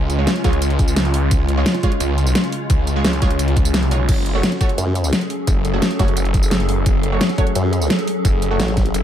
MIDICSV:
0, 0, Header, 1, 6, 480
1, 0, Start_track
1, 0, Key_signature, 3, "minor"
1, 0, Tempo, 346821
1, 1816, Time_signature, 4, 2, 24, 8
1, 12500, End_track
2, 0, Start_track
2, 0, Title_t, "Synth stab"
2, 0, Program_c, 0, 62
2, 256, Note_on_c, 0, 56, 79
2, 256, Note_on_c, 0, 65, 71
2, 256, Note_on_c, 0, 73, 86
2, 455, Note_off_c, 0, 56, 0
2, 455, Note_off_c, 0, 65, 0
2, 455, Note_off_c, 0, 73, 0
2, 616, Note_on_c, 0, 56, 84
2, 616, Note_on_c, 0, 73, 90
2, 617, Note_on_c, 0, 65, 78
2, 741, Note_off_c, 0, 56, 0
2, 741, Note_off_c, 0, 65, 0
2, 741, Note_off_c, 0, 73, 0
2, 2177, Note_on_c, 0, 56, 80
2, 2177, Note_on_c, 0, 65, 75
2, 2177, Note_on_c, 0, 73, 88
2, 2375, Note_off_c, 0, 73, 0
2, 2376, Note_off_c, 0, 56, 0
2, 2376, Note_off_c, 0, 65, 0
2, 2537, Note_on_c, 0, 65, 77
2, 2537, Note_on_c, 0, 73, 88
2, 2538, Note_on_c, 0, 56, 84
2, 2661, Note_off_c, 0, 56, 0
2, 2661, Note_off_c, 0, 65, 0
2, 2661, Note_off_c, 0, 73, 0
2, 4096, Note_on_c, 0, 56, 81
2, 4096, Note_on_c, 0, 73, 88
2, 4097, Note_on_c, 0, 65, 71
2, 4295, Note_off_c, 0, 56, 0
2, 4295, Note_off_c, 0, 65, 0
2, 4295, Note_off_c, 0, 73, 0
2, 4456, Note_on_c, 0, 56, 80
2, 4456, Note_on_c, 0, 65, 75
2, 4456, Note_on_c, 0, 73, 88
2, 4580, Note_off_c, 0, 56, 0
2, 4580, Note_off_c, 0, 65, 0
2, 4581, Note_off_c, 0, 73, 0
2, 5416, Note_on_c, 0, 56, 75
2, 5417, Note_on_c, 0, 65, 68
2, 5417, Note_on_c, 0, 73, 84
2, 5540, Note_off_c, 0, 56, 0
2, 5541, Note_off_c, 0, 65, 0
2, 5541, Note_off_c, 0, 73, 0
2, 6016, Note_on_c, 0, 57, 80
2, 6016, Note_on_c, 0, 66, 70
2, 6016, Note_on_c, 0, 73, 85
2, 6215, Note_off_c, 0, 57, 0
2, 6215, Note_off_c, 0, 66, 0
2, 6215, Note_off_c, 0, 73, 0
2, 6375, Note_on_c, 0, 57, 86
2, 6375, Note_on_c, 0, 66, 74
2, 6375, Note_on_c, 0, 73, 92
2, 6500, Note_off_c, 0, 57, 0
2, 6500, Note_off_c, 0, 66, 0
2, 6500, Note_off_c, 0, 73, 0
2, 7936, Note_on_c, 0, 57, 79
2, 7936, Note_on_c, 0, 66, 73
2, 7936, Note_on_c, 0, 73, 85
2, 8135, Note_off_c, 0, 57, 0
2, 8135, Note_off_c, 0, 66, 0
2, 8135, Note_off_c, 0, 73, 0
2, 8296, Note_on_c, 0, 57, 80
2, 8296, Note_on_c, 0, 66, 75
2, 8296, Note_on_c, 0, 73, 92
2, 8420, Note_off_c, 0, 57, 0
2, 8420, Note_off_c, 0, 66, 0
2, 8420, Note_off_c, 0, 73, 0
2, 9855, Note_on_c, 0, 57, 79
2, 9855, Note_on_c, 0, 66, 72
2, 9855, Note_on_c, 0, 73, 88
2, 10054, Note_off_c, 0, 57, 0
2, 10054, Note_off_c, 0, 66, 0
2, 10054, Note_off_c, 0, 73, 0
2, 10215, Note_on_c, 0, 57, 83
2, 10215, Note_on_c, 0, 66, 76
2, 10215, Note_on_c, 0, 73, 95
2, 10340, Note_off_c, 0, 57, 0
2, 10340, Note_off_c, 0, 66, 0
2, 10340, Note_off_c, 0, 73, 0
2, 11777, Note_on_c, 0, 57, 79
2, 11777, Note_on_c, 0, 66, 69
2, 11777, Note_on_c, 0, 73, 88
2, 11975, Note_off_c, 0, 57, 0
2, 11975, Note_off_c, 0, 66, 0
2, 11975, Note_off_c, 0, 73, 0
2, 12500, End_track
3, 0, Start_track
3, 0, Title_t, "Synth drone"
3, 0, Program_c, 1, 95
3, 0, Note_on_c, 1, 49, 85
3, 0, Note_on_c, 1, 56, 74
3, 0, Note_on_c, 1, 61, 76
3, 0, Note_on_c, 1, 65, 92
3, 5600, Note_off_c, 1, 65, 0
3, 5601, Note_off_c, 1, 49, 0
3, 5601, Note_off_c, 1, 56, 0
3, 5601, Note_off_c, 1, 61, 0
3, 5655, Note_on_c, 1, 54, 82
3, 5656, Note_on_c, 1, 61, 76
3, 5656, Note_on_c, 1, 68, 76
3, 5656, Note_on_c, 1, 69, 93
3, 12500, Note_off_c, 1, 54, 0
3, 12500, Note_off_c, 1, 61, 0
3, 12500, Note_off_c, 1, 68, 0
3, 12500, Note_off_c, 1, 69, 0
3, 12500, End_track
4, 0, Start_track
4, 0, Title_t, "Wobble bass"
4, 0, Program_c, 2, 39
4, 6615, Note_on_c, 2, 42, 93
4, 7077, Note_off_c, 2, 42, 0
4, 10457, Note_on_c, 2, 42, 100
4, 10917, Note_off_c, 2, 42, 0
4, 11896, Note_on_c, 2, 33, 98
4, 12357, Note_off_c, 2, 33, 0
4, 12500, End_track
5, 0, Start_track
5, 0, Title_t, "Detuned saw bass"
5, 0, Program_c, 3, 39
5, 0, Note_on_c, 3, 37, 91
5, 357, Note_off_c, 3, 37, 0
5, 617, Note_on_c, 3, 37, 94
5, 1797, Note_off_c, 3, 37, 0
5, 1816, Note_on_c, 3, 37, 93
5, 2277, Note_off_c, 3, 37, 0
5, 2776, Note_on_c, 3, 37, 101
5, 3237, Note_off_c, 3, 37, 0
5, 3736, Note_on_c, 3, 37, 97
5, 4197, Note_off_c, 3, 37, 0
5, 4218, Note_on_c, 3, 37, 97
5, 5214, Note_off_c, 3, 37, 0
5, 5214, Note_on_c, 3, 36, 97
5, 5638, Note_off_c, 3, 36, 0
5, 5656, Note_on_c, 3, 30, 97
5, 6117, Note_off_c, 3, 30, 0
5, 7577, Note_on_c, 3, 30, 93
5, 8037, Note_off_c, 3, 30, 0
5, 8296, Note_on_c, 3, 30, 92
5, 9477, Note_off_c, 3, 30, 0
5, 9496, Note_on_c, 3, 30, 96
5, 9957, Note_off_c, 3, 30, 0
5, 11416, Note_on_c, 3, 30, 97
5, 11877, Note_off_c, 3, 30, 0
5, 12377, Note_on_c, 3, 30, 99
5, 12500, Note_off_c, 3, 30, 0
5, 12500, End_track
6, 0, Start_track
6, 0, Title_t, "Drums"
6, 135, Note_on_c, 9, 42, 64
6, 135, Note_on_c, 9, 54, 29
6, 273, Note_off_c, 9, 42, 0
6, 273, Note_off_c, 9, 54, 0
6, 374, Note_on_c, 9, 38, 115
6, 374, Note_on_c, 9, 42, 89
6, 374, Note_on_c, 9, 54, 48
6, 494, Note_off_c, 9, 42, 0
6, 494, Note_on_c, 9, 42, 36
6, 513, Note_off_c, 9, 38, 0
6, 513, Note_off_c, 9, 54, 0
6, 613, Note_off_c, 9, 42, 0
6, 613, Note_on_c, 9, 38, 37
6, 613, Note_on_c, 9, 42, 64
6, 613, Note_on_c, 9, 54, 27
6, 616, Note_on_c, 9, 36, 101
6, 734, Note_off_c, 9, 42, 0
6, 734, Note_on_c, 9, 42, 36
6, 752, Note_off_c, 9, 38, 0
6, 752, Note_off_c, 9, 54, 0
6, 754, Note_off_c, 9, 36, 0
6, 855, Note_off_c, 9, 42, 0
6, 855, Note_on_c, 9, 42, 91
6, 855, Note_on_c, 9, 54, 51
6, 974, Note_off_c, 9, 42, 0
6, 974, Note_on_c, 9, 42, 33
6, 994, Note_off_c, 9, 54, 0
6, 1096, Note_off_c, 9, 42, 0
6, 1096, Note_on_c, 9, 36, 109
6, 1096, Note_on_c, 9, 42, 66
6, 1096, Note_on_c, 9, 54, 29
6, 1214, Note_off_c, 9, 54, 0
6, 1214, Note_on_c, 9, 54, 58
6, 1234, Note_off_c, 9, 36, 0
6, 1234, Note_off_c, 9, 42, 0
6, 1335, Note_off_c, 9, 54, 0
6, 1335, Note_on_c, 9, 38, 115
6, 1335, Note_on_c, 9, 42, 91
6, 1335, Note_on_c, 9, 54, 51
6, 1455, Note_off_c, 9, 42, 0
6, 1455, Note_on_c, 9, 42, 35
6, 1474, Note_off_c, 9, 38, 0
6, 1474, Note_off_c, 9, 54, 0
6, 1576, Note_on_c, 9, 46, 88
6, 1594, Note_off_c, 9, 42, 0
6, 1714, Note_off_c, 9, 46, 0
6, 1815, Note_on_c, 9, 36, 120
6, 1816, Note_on_c, 9, 42, 94
6, 1816, Note_on_c, 9, 54, 54
6, 1954, Note_off_c, 9, 36, 0
6, 1954, Note_off_c, 9, 42, 0
6, 1954, Note_off_c, 9, 54, 0
6, 2056, Note_on_c, 9, 42, 64
6, 2194, Note_off_c, 9, 42, 0
6, 2296, Note_on_c, 9, 38, 116
6, 2296, Note_on_c, 9, 42, 86
6, 2296, Note_on_c, 9, 54, 51
6, 2415, Note_off_c, 9, 38, 0
6, 2415, Note_off_c, 9, 42, 0
6, 2415, Note_on_c, 9, 38, 35
6, 2415, Note_on_c, 9, 42, 36
6, 2434, Note_off_c, 9, 54, 0
6, 2535, Note_off_c, 9, 42, 0
6, 2535, Note_on_c, 9, 36, 99
6, 2535, Note_on_c, 9, 42, 62
6, 2535, Note_on_c, 9, 54, 28
6, 2554, Note_off_c, 9, 38, 0
6, 2655, Note_off_c, 9, 42, 0
6, 2655, Note_on_c, 9, 42, 38
6, 2674, Note_off_c, 9, 36, 0
6, 2674, Note_off_c, 9, 54, 0
6, 2774, Note_off_c, 9, 42, 0
6, 2774, Note_on_c, 9, 42, 92
6, 2774, Note_on_c, 9, 54, 51
6, 2912, Note_off_c, 9, 42, 0
6, 2912, Note_off_c, 9, 54, 0
6, 3016, Note_on_c, 9, 42, 66
6, 3016, Note_on_c, 9, 54, 29
6, 3135, Note_off_c, 9, 54, 0
6, 3135, Note_on_c, 9, 54, 61
6, 3154, Note_off_c, 9, 42, 0
6, 3255, Note_off_c, 9, 54, 0
6, 3255, Note_on_c, 9, 38, 113
6, 3255, Note_on_c, 9, 42, 90
6, 3255, Note_on_c, 9, 54, 51
6, 3375, Note_off_c, 9, 42, 0
6, 3375, Note_on_c, 9, 42, 36
6, 3393, Note_off_c, 9, 38, 0
6, 3393, Note_off_c, 9, 54, 0
6, 3494, Note_on_c, 9, 46, 84
6, 3513, Note_off_c, 9, 42, 0
6, 3632, Note_off_c, 9, 46, 0
6, 3734, Note_on_c, 9, 42, 97
6, 3734, Note_on_c, 9, 54, 53
6, 3735, Note_on_c, 9, 36, 124
6, 3873, Note_off_c, 9, 42, 0
6, 3873, Note_off_c, 9, 54, 0
6, 3874, Note_off_c, 9, 36, 0
6, 3975, Note_on_c, 9, 42, 69
6, 3975, Note_on_c, 9, 54, 30
6, 4113, Note_off_c, 9, 42, 0
6, 4113, Note_off_c, 9, 54, 0
6, 4215, Note_on_c, 9, 38, 119
6, 4215, Note_on_c, 9, 42, 96
6, 4215, Note_on_c, 9, 54, 53
6, 4335, Note_off_c, 9, 42, 0
6, 4335, Note_on_c, 9, 42, 39
6, 4354, Note_off_c, 9, 38, 0
6, 4354, Note_off_c, 9, 54, 0
6, 4455, Note_off_c, 9, 42, 0
6, 4455, Note_on_c, 9, 36, 98
6, 4455, Note_on_c, 9, 38, 35
6, 4455, Note_on_c, 9, 42, 67
6, 4455, Note_on_c, 9, 54, 28
6, 4575, Note_off_c, 9, 42, 0
6, 4575, Note_on_c, 9, 42, 38
6, 4593, Note_off_c, 9, 38, 0
6, 4593, Note_off_c, 9, 54, 0
6, 4594, Note_off_c, 9, 36, 0
6, 4695, Note_off_c, 9, 42, 0
6, 4695, Note_on_c, 9, 42, 96
6, 4695, Note_on_c, 9, 54, 54
6, 4815, Note_off_c, 9, 42, 0
6, 4815, Note_on_c, 9, 42, 35
6, 4833, Note_off_c, 9, 54, 0
6, 4935, Note_off_c, 9, 42, 0
6, 4935, Note_on_c, 9, 42, 69
6, 4935, Note_on_c, 9, 54, 29
6, 4936, Note_on_c, 9, 36, 110
6, 5055, Note_off_c, 9, 54, 0
6, 5055, Note_on_c, 9, 54, 64
6, 5074, Note_off_c, 9, 36, 0
6, 5074, Note_off_c, 9, 42, 0
6, 5176, Note_off_c, 9, 54, 0
6, 5176, Note_on_c, 9, 38, 116
6, 5176, Note_on_c, 9, 42, 95
6, 5176, Note_on_c, 9, 54, 50
6, 5296, Note_off_c, 9, 42, 0
6, 5296, Note_on_c, 9, 42, 37
6, 5314, Note_off_c, 9, 38, 0
6, 5314, Note_off_c, 9, 54, 0
6, 5416, Note_on_c, 9, 46, 81
6, 5416, Note_on_c, 9, 54, 31
6, 5434, Note_off_c, 9, 42, 0
6, 5554, Note_off_c, 9, 46, 0
6, 5554, Note_off_c, 9, 54, 0
6, 5656, Note_on_c, 9, 36, 127
6, 5656, Note_on_c, 9, 42, 99
6, 5656, Note_on_c, 9, 49, 76
6, 5656, Note_on_c, 9, 54, 53
6, 5794, Note_off_c, 9, 42, 0
6, 5794, Note_off_c, 9, 49, 0
6, 5794, Note_off_c, 9, 54, 0
6, 5795, Note_off_c, 9, 36, 0
6, 5896, Note_on_c, 9, 42, 69
6, 6034, Note_off_c, 9, 42, 0
6, 6136, Note_on_c, 9, 38, 120
6, 6136, Note_on_c, 9, 42, 100
6, 6136, Note_on_c, 9, 54, 52
6, 6257, Note_off_c, 9, 38, 0
6, 6257, Note_off_c, 9, 42, 0
6, 6257, Note_on_c, 9, 38, 36
6, 6257, Note_on_c, 9, 42, 40
6, 6275, Note_off_c, 9, 54, 0
6, 6376, Note_off_c, 9, 42, 0
6, 6376, Note_on_c, 9, 36, 108
6, 6376, Note_on_c, 9, 42, 69
6, 6376, Note_on_c, 9, 54, 30
6, 6395, Note_off_c, 9, 38, 0
6, 6496, Note_off_c, 9, 42, 0
6, 6496, Note_on_c, 9, 42, 40
6, 6515, Note_off_c, 9, 36, 0
6, 6515, Note_off_c, 9, 54, 0
6, 6616, Note_off_c, 9, 42, 0
6, 6616, Note_on_c, 9, 42, 95
6, 6616, Note_on_c, 9, 54, 54
6, 6754, Note_off_c, 9, 42, 0
6, 6754, Note_off_c, 9, 54, 0
6, 6856, Note_on_c, 9, 42, 72
6, 6856, Note_on_c, 9, 54, 30
6, 6975, Note_off_c, 9, 54, 0
6, 6975, Note_on_c, 9, 54, 62
6, 6994, Note_off_c, 9, 42, 0
6, 7095, Note_off_c, 9, 54, 0
6, 7095, Note_on_c, 9, 38, 118
6, 7095, Note_on_c, 9, 42, 99
6, 7095, Note_on_c, 9, 54, 52
6, 7215, Note_off_c, 9, 42, 0
6, 7215, Note_on_c, 9, 42, 38
6, 7234, Note_off_c, 9, 38, 0
6, 7234, Note_off_c, 9, 54, 0
6, 7335, Note_on_c, 9, 46, 75
6, 7353, Note_off_c, 9, 42, 0
6, 7474, Note_off_c, 9, 46, 0
6, 7575, Note_on_c, 9, 42, 100
6, 7575, Note_on_c, 9, 54, 52
6, 7576, Note_on_c, 9, 36, 127
6, 7714, Note_off_c, 9, 42, 0
6, 7714, Note_off_c, 9, 54, 0
6, 7715, Note_off_c, 9, 36, 0
6, 7816, Note_on_c, 9, 42, 71
6, 7816, Note_on_c, 9, 54, 29
6, 7954, Note_off_c, 9, 42, 0
6, 7954, Note_off_c, 9, 54, 0
6, 8055, Note_on_c, 9, 38, 123
6, 8055, Note_on_c, 9, 42, 97
6, 8055, Note_on_c, 9, 54, 51
6, 8175, Note_off_c, 9, 42, 0
6, 8175, Note_on_c, 9, 42, 39
6, 8194, Note_off_c, 9, 38, 0
6, 8194, Note_off_c, 9, 54, 0
6, 8296, Note_off_c, 9, 42, 0
6, 8296, Note_on_c, 9, 36, 107
6, 8296, Note_on_c, 9, 38, 39
6, 8296, Note_on_c, 9, 42, 70
6, 8296, Note_on_c, 9, 54, 28
6, 8416, Note_off_c, 9, 42, 0
6, 8416, Note_on_c, 9, 42, 40
6, 8434, Note_off_c, 9, 36, 0
6, 8435, Note_off_c, 9, 38, 0
6, 8435, Note_off_c, 9, 54, 0
6, 8535, Note_off_c, 9, 42, 0
6, 8535, Note_on_c, 9, 42, 99
6, 8535, Note_on_c, 9, 54, 52
6, 8655, Note_off_c, 9, 42, 0
6, 8655, Note_on_c, 9, 42, 38
6, 8674, Note_off_c, 9, 54, 0
6, 8775, Note_off_c, 9, 42, 0
6, 8775, Note_on_c, 9, 42, 70
6, 8775, Note_on_c, 9, 54, 29
6, 8776, Note_on_c, 9, 36, 118
6, 8895, Note_off_c, 9, 54, 0
6, 8895, Note_on_c, 9, 54, 59
6, 8914, Note_off_c, 9, 36, 0
6, 8914, Note_off_c, 9, 42, 0
6, 9014, Note_off_c, 9, 54, 0
6, 9014, Note_on_c, 9, 38, 127
6, 9014, Note_on_c, 9, 42, 99
6, 9014, Note_on_c, 9, 54, 51
6, 9135, Note_off_c, 9, 42, 0
6, 9135, Note_on_c, 9, 42, 38
6, 9153, Note_off_c, 9, 38, 0
6, 9153, Note_off_c, 9, 54, 0
6, 9255, Note_on_c, 9, 46, 78
6, 9273, Note_off_c, 9, 42, 0
6, 9393, Note_off_c, 9, 46, 0
6, 9495, Note_on_c, 9, 36, 127
6, 9495, Note_on_c, 9, 42, 97
6, 9495, Note_on_c, 9, 54, 48
6, 9633, Note_off_c, 9, 42, 0
6, 9633, Note_off_c, 9, 54, 0
6, 9634, Note_off_c, 9, 36, 0
6, 9735, Note_on_c, 9, 42, 70
6, 9873, Note_off_c, 9, 42, 0
6, 9976, Note_on_c, 9, 38, 126
6, 9976, Note_on_c, 9, 42, 100
6, 9976, Note_on_c, 9, 54, 49
6, 10096, Note_off_c, 9, 38, 0
6, 10096, Note_off_c, 9, 42, 0
6, 10096, Note_on_c, 9, 38, 37
6, 10096, Note_on_c, 9, 42, 37
6, 10115, Note_off_c, 9, 54, 0
6, 10215, Note_on_c, 9, 36, 107
6, 10217, Note_off_c, 9, 42, 0
6, 10217, Note_on_c, 9, 42, 66
6, 10217, Note_on_c, 9, 54, 27
6, 10235, Note_off_c, 9, 38, 0
6, 10335, Note_off_c, 9, 42, 0
6, 10335, Note_on_c, 9, 42, 39
6, 10354, Note_off_c, 9, 36, 0
6, 10355, Note_off_c, 9, 54, 0
6, 10455, Note_off_c, 9, 42, 0
6, 10455, Note_on_c, 9, 42, 95
6, 10455, Note_on_c, 9, 54, 52
6, 10594, Note_off_c, 9, 42, 0
6, 10594, Note_off_c, 9, 54, 0
6, 10696, Note_on_c, 9, 42, 70
6, 10696, Note_on_c, 9, 54, 27
6, 10816, Note_off_c, 9, 54, 0
6, 10816, Note_on_c, 9, 54, 58
6, 10834, Note_off_c, 9, 42, 0
6, 10936, Note_off_c, 9, 54, 0
6, 10936, Note_on_c, 9, 38, 125
6, 10936, Note_on_c, 9, 42, 92
6, 10936, Note_on_c, 9, 54, 49
6, 11056, Note_off_c, 9, 42, 0
6, 11056, Note_on_c, 9, 42, 37
6, 11074, Note_off_c, 9, 38, 0
6, 11074, Note_off_c, 9, 54, 0
6, 11176, Note_on_c, 9, 46, 82
6, 11194, Note_off_c, 9, 42, 0
6, 11314, Note_off_c, 9, 46, 0
6, 11416, Note_on_c, 9, 36, 127
6, 11416, Note_on_c, 9, 42, 90
6, 11416, Note_on_c, 9, 54, 48
6, 11554, Note_off_c, 9, 36, 0
6, 11555, Note_off_c, 9, 42, 0
6, 11555, Note_off_c, 9, 54, 0
6, 11656, Note_on_c, 9, 42, 70
6, 11656, Note_on_c, 9, 54, 26
6, 11794, Note_off_c, 9, 42, 0
6, 11794, Note_off_c, 9, 54, 0
6, 11896, Note_on_c, 9, 38, 127
6, 11896, Note_on_c, 9, 42, 90
6, 11896, Note_on_c, 9, 54, 47
6, 12017, Note_off_c, 9, 42, 0
6, 12017, Note_on_c, 9, 42, 35
6, 12035, Note_off_c, 9, 38, 0
6, 12035, Note_off_c, 9, 54, 0
6, 12136, Note_on_c, 9, 36, 110
6, 12137, Note_off_c, 9, 42, 0
6, 12137, Note_on_c, 9, 38, 40
6, 12137, Note_on_c, 9, 42, 63
6, 12137, Note_on_c, 9, 54, 25
6, 12257, Note_off_c, 9, 42, 0
6, 12257, Note_on_c, 9, 42, 38
6, 12274, Note_off_c, 9, 36, 0
6, 12275, Note_off_c, 9, 38, 0
6, 12275, Note_off_c, 9, 54, 0
6, 12377, Note_off_c, 9, 42, 0
6, 12377, Note_on_c, 9, 42, 93
6, 12377, Note_on_c, 9, 54, 47
6, 12500, Note_off_c, 9, 42, 0
6, 12500, Note_off_c, 9, 54, 0
6, 12500, End_track
0, 0, End_of_file